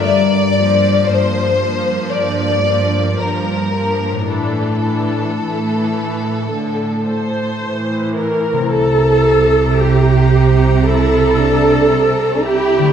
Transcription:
<<
  \new Staff \with { instrumentName = "Violin section" } { \time 4/4 \key c \mixolydian \tempo 4 = 56 r1 | r1 | bes''1 | }
  \new Staff \with { instrumentName = "Violin section" } { \time 4/4 \key c \mixolydian d''4 c''4 d''4 bes'4 | a'2. r4 | r2 e'8 d'8 c'8 e'8 | }
  \new Staff \with { instrumentName = "Harp" } { \time 4/4 \key c \mixolydian <g, d' f' bes'>1 | <a, d' e' a'>1 | <c c' e' bes'>1 | }
  \new Staff \with { instrumentName = "Viola section" } { \time 4/4 \key c \mixolydian << { r8 <f bes>4 <f bes>4 <f bes>4 <f bes>8 | <e d'>8 <e d'>8 r4. c''4 bes'8 | a'4 g'4 a'4. g'8 | } \\ { r1 | r4 e4 d8 r8 e4 | r1 | } >> }
  \new Staff \with { instrumentName = "Cello section" } { \clef bass \time 4/4 \key c \mixolydian g,4 g,4 g,4 g,4 | a,4 a,4 a,4 a,4 | c1 | }
  \new Staff \with { instrumentName = "Double bass section" } { \clef bass \time 4/4 \key c \mixolydian r1 | r1 | c,1 | }
>>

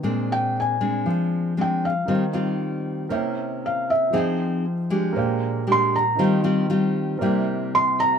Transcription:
<<
  \new Staff \with { instrumentName = "Felt piano" } { \time 4/4 \key ees \major \tempo 4 = 117 r8 g''8 aes''4 r4 g''8 f''8 | r2. f''8 e''8 | r2. c'''8 bes''8 | r2. c'''8 bes''8 | }
  \new Staff \with { instrumentName = "Grand piano" } { \time 4/4 \key ees \major r1 | <ees' bes' c'' f'' g''>2 <bes' des'' e'' g''>2 | <f aes' c'' ees'' g''>2 <bes c'' d'' f'' g''>2 | <ees' bes' c'' f'' g''>2 <c' bes' d'' e'' g''>2 | }
  \new Staff \with { instrumentName = "Nylon-string guitar" } { \time 4/4 \key ees \major << { <aes c' d'>4. <aes c' d'>4. <aes c' d'>8 r8 | <g c' f'>8 <g c' f'>4. <bes des' e'>2 | <c' ees' aes'>4 r8 <aes d' g'>4. <aes d' g'>8 r8 | <g c' f'>8 <g c' f'>8 <g c' f'>4 <g bes e'>2 | } \\ { bes,2 f2 | ees2 c2 | f2 bes,2 | ees2 c2 | } >> }
>>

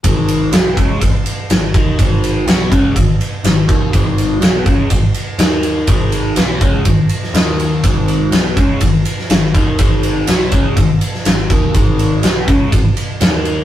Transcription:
<<
  \new Staff \with { instrumentName = "Overdriven electric guitar" } { \clef bass \time 4/4 \key gis \minor \tempo 4 = 123 <gis, dis gis>4 <b, fis b>8 <cis gis cis'>8 <gis, dis>8 r8 <gis, dis>8 <dis ais dis'>8 | <gis, dis gis>4 <b, fis b>8 <cis gis cis'>8 <gis, dis>8 r8 <gis, dis>8 <dis ais dis'>8 | <gis, dis gis>4 <b, fis b>8 <cis gis cis'>8 <gis, dis>8 r8 <dis ais dis'>4 | <gis, dis gis>4 <b, fis b>8 <cis gis cis'>8 <gis, dis>8 r8 <dis ais dis'>4 |
<gis, dis gis>4 <b, fis b>8 <cis gis cis'>8 <gis, dis>8 r8 <gis, dis>8 <dis ais dis'>8 | <gis, dis gis>4 <b, fis b>8 <cis gis cis'>8 <gis, dis>8 r8 <gis, dis>8 <dis ais dis'>8 | <gis, dis gis>4 <b, fis b>8 <cis gis cis'>8 <gis, dis>8 r8 <dis ais dis'>4 | }
  \new Staff \with { instrumentName = "Picked electric bass" } { \clef bass \time 4/4 \key gis \minor gis,,4 b,,8 cis,8 gis,,8 r8 gis,,8 dis,8 | gis,,4 b,,8 cis,8 gis,,8 r8 gis,,8 dis,8 | gis,,4 b,,8 cis,8 gis,,8 r8 dis,4 | gis,,4 b,,8 cis,8 gis,,8 r8 dis,4 |
gis,,4 b,,8 cis,8 gis,,8 r8 gis,,8 dis,8 | gis,,4 b,,8 cis,8 gis,,8 r8 gis,,8 dis,8 | gis,,4 b,,8 cis,8 gis,,8 r8 dis,4 | }
  \new DrumStaff \with { instrumentName = "Drums" } \drummode { \time 4/4 <bd cymr>8 cymr8 <cymr sn>8 <bd cymr>8 <bd cymr>8 cymr8 <cymr sn>8 <bd cymr>8 | <bd cymr>8 cymr8 <cymr sn>8 <bd cymr>8 <bd cymr>8 cymr8 <cymr sn>8 <bd cymr>8 | <bd cymr>8 cymr8 <cymr sn>8 <bd cymr>8 <bd cymr>8 cymr8 <cymr sn>8 cymr8 | <bd cymr>8 cymr8 <cymr sn>8 <bd cymr>8 <bd cymr>8 cymr16 sn16 <cymr sn>8 cymr8 |
<bd cymr>8 cymr8 <cymr sn>8 <bd cymr>8 <bd cymr>8 cymr16 sn16 <cymr sn>8 <bd cymr>8 | <bd cymr>8 cymr8 <cymr sn>8 <bd cymr>8 <bd cymr>8 cymr16 sn16 <cymr sn>8 <bd cymr>8 | <bd cymr>8 cymr8 <cymr sn>8 <bd cymr>8 <bd cymr>8 cymr8 <cymr sn>8 cymr8 | }
>>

